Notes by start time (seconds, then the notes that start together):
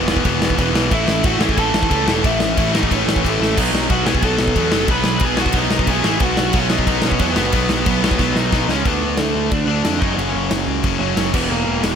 Already playing: E1 B3 B4
0.08 E2 B2 E3, snare
0.17 kick
0.24 E1 E2 B2 E3 B3 B4, kick, ride
0.41 E1, snare
0.50 kick
0.57 E1 E2 B2 E3 B3 B4, kick, ride
0.73 B1 E2 B2 E3, snare
0.90 A1 A2 E3 A3 E4 E5, kick, ride
1.07 A1, snare
1.24 A1 A2 E3 A3 F#4 F#5, kick, ride
1.39 A1 A2 E3 A3 G#4 G#5, snare
1.49 kick
1.55 A1 A2 E3 A3 A4 A5, kick, ride
1.73 A1, snare
1.83 kick
1.89 C#2 A2 E3 A3, kick, ride
2.07 E1 A2 E3 A3, snare
2.23 A1 A2 E3 A3 E4 E5, kick, ride
2.40 A1, snare
2.56 A1 A2 E3 A3 E4 E5, kick, ride
2.72 A2 E3 A3 D#4 D#5, snare
2.83 kick
2.90 A1 A2 E3 A3 C#4, kick, ride
2.96 C#5
3.07 A1, snare
3.16 kick
3.23 A1 A2 E3 A3 A4, kick, ride
3.39 A1 A2 E3 A3, snare
3.57 B1 B2 F#3 B3 D#4 D#5, kick, crash
3.72 B1, snare
3.89 B1 B2 F#3 B3 F#4 F#5, kick, ride
4.04 B1 B2 F#3 B3 G#4 G#5, snare
4.15 kick
4.22 B1 B2 F#3 B3 A4 A5, kick, ride
4.39 B1, snare
4.48 kick
4.55 E2 B2 F#3 B3, kick, ride
4.72 F#1 B2 F#3 B3, snare
4.88 B1 B2 F#3 B3 B4 B5, kick, ride
5.04 B1, snare
5.20 B1 B2 F#3 B3, kick, ride
5.25 G#4 G#5
5.37 B2 F#3 B3 F#4, snare
5.42 F#5
5.46 kick
5.52 B1 B2 F#3 B3 D#4, kick, ride
5.57 D#5
5.70 B1, snare
5.79 kick
5.87 B1 B2 F#3 B3 G#4 G#5, kick, ride
6.04 A1 A2 E3 A3, snare
6.20 B1 B2 F#3 B3 F#4 F#5, kick, ride
6.37 B1, snare
6.53 B1 B2 F#3 B3, kick, ride
6.57 C#4 C#5
6.69 B1 B2 F#3 B3 D#4 D#5, snare
6.79 kick
6.87 B1 B2 F#3 B3, kick, ride
7.02 B1 C#4, snare
7.06 C#5
7.12 kick
7.19 E2 B2 F#3 B3 B4, kick, ride
7.36 F#1 B2 F#3 B3, snare
7.52 B1 B2 F#3 B3, kick, ride
7.69 B1, snare
7.86 B1 B2 F#3 B3, kick, ride
8.02 B2 F#3 B3, snare
8.11 kick
8.18 B1 B2 F#3 B3, kick, snare
8.36 B1 D#4 D#5, snare
8.52 B1 B2 F#3 B3, kick, snare
8.68 C#2 C#3 G#3 C#4 C#5, snare
8.73 C#4
8.84 D2 D3 A3 B3 D4 B4, kick, ride
9.02 D2
9.17 D2 A3 A4, snare, ride
9.35 D2
9.51 D2 D4 D5, kick, ride
9.66 D2 D3 A3 D4 D5
9.84 F2 D3 A3 D4, snare, ride
9.99 F#1 F#2 C#3 D#4 D#5, kick
10.03 F#3
10.15 F#1 C#4 C#5
10.19 ride
10.34 F#1
10.51 F#1, snare, ride
10.67 C#2
10.83 F#1 F#2 C#3 F#3, kick, ride
10.99 F#1 F#2 C#3 F#3 C#4 C#5
11.16 F#1, snare, ride
11.31 E1 E2 B2 E3 B3 B4, kick, crash
11.50 E1 A#3 A#4
11.67 E1
11.84 E1 G#3 G#4, snare, ride